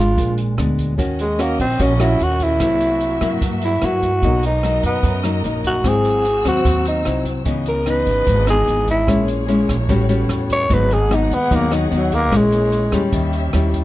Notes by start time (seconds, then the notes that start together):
Already playing: G#1 G#3
0.00 D4 F4
0.17 A#1 A#2, kick, closed hi-hat
0.38 closed hi-hat
0.57 D2 G#3 B3 D4, cross-stick, closed hi-hat
0.78 kick, closed hi-hat
0.98 D#2 D#3 A#3 C#4 F#4 D#5, kick, closed hi-hat
1.19 G#3, closed hi-hat
1.38 A#3 C#4 F#4, cross-stick, closed hi-hat
1.59 A#1 C4, kick, closed hi-hat
1.79 A#1 A#2 A#3 C#4 F#4, kick, closed hi-hat
1.99 A#3 C#4 E4 F#4, cross-stick, closed hi-hat
2.20 D#2 F#4, closed hi-hat
2.40 E4, kick, closed hi-hat
2.60 C2 C3 F#3 A#3 E4 E5, kick, cross-stick, closed hi-hat
2.80 closed hi-hat
3.00 closed hi-hat
3.21 G2 F#3 A#3 E4, kick, cross-stick, closed hi-hat
3.41 G2, kick, closed hi-hat
3.62 E4, closed hi-hat
3.82 G2 F#3 A#3 E4 F#4, cross-stick, closed hi-hat
4.02 kick, closed hi-hat
4.22 B1 B2 F#3 A#3 D#4 A#4 D#5, kick, closed hi-hat
4.43 D#4, closed hi-hat
4.63 F#3 A#3 D#4, cross-stick, closed hi-hat
4.83 F#2 B3, kick, closed hi-hat
5.03 F#2, kick, closed hi-hat
5.23 F#3 A#3 D#4, cross-stick, closed hi-hat
5.44 A#1 F#3 A#3 D#4, closed hi-hat
5.64 F#4, kick, closed hi-hat
5.84 G#1 G#2 F#3 C4 E4 F#4 E6, kick, cross-stick, closed hi-hat
5.89 G#4
6.04 closed hi-hat
6.25 closed hi-hat
6.45 D#2 F#3 C4 F#4, kick, cross-stick, closed hi-hat
6.65 D#2, kick, closed hi-hat
6.85 D#4, closed hi-hat
7.05 C2 F#3 C4 E4, cross-stick, closed hi-hat
7.25 kick, closed hi-hat
7.45 C#2 C#3 E3 B3 D#4 D#5, kick, closed hi-hat
7.66 A#4, closed hi-hat
7.86 E3 B3 D#4, cross-stick, closed hi-hat
7.90 B4
8.07 G#1, kick, closed hi-hat
8.26 G#1 G#2, kick, closed hi-hat
8.47 E3 B3 D#4 G#4, cross-stick, closed hi-hat
8.68 G#1, closed hi-hat
8.88 E4, kick, closed hi-hat
9.07 A#1 A#2 G#3 A#3 C#4 E4 G#4 C#5, kick, cross-stick, closed hi-hat
9.28 closed hi-hat
9.48 G#3 C#4 E4, closed hi-hat
9.69 A#1, kick, cross-stick, closed hi-hat
9.89 A1 A2 G3 B3 C#4 F#4, kick, closed hi-hat
10.09 G3 C#4 F#4, closed hi-hat
10.29 E2, cross-stick, closed hi-hat
10.50 C#5, kick, closed hi-hat
10.69 G#1 G#2 F#3 B3 D#4 G#4 F#5, kick, closed hi-hat
10.74 B4
10.91 G#4, closed hi-hat
11.10 F#3 B3 D#4, cross-stick, closed hi-hat
11.15 D#4
11.31 D#2 B3, kick, closed hi-hat
11.50 D#2 D#3 F#3 B3 D#4, kick, closed hi-hat
11.55 A#3
11.71 F#3 B3 D#4, cross-stick, closed hi-hat
11.75 D#3
11.90 D#2 F#3 B3 D#4, closed hi-hat
11.96 F#3
12.12 A#3, kick, closed hi-hat
12.31 A#1 A#2 G#3 A#3 C#4 E4 C#5, kick, cross-stick, closed hi-hat
12.36 G#3
12.52 closed hi-hat
12.72 closed hi-hat
12.92 E2 G3 C#4, kick, cross-stick, closed hi-hat
13.11 D#2 D#3 C#4 G4 E5, kick, closed hi-hat
13.33 closed hi-hat
13.53 D#2 G3 C#4 E4, cross-stick, closed hi-hat
13.74 kick, closed hi-hat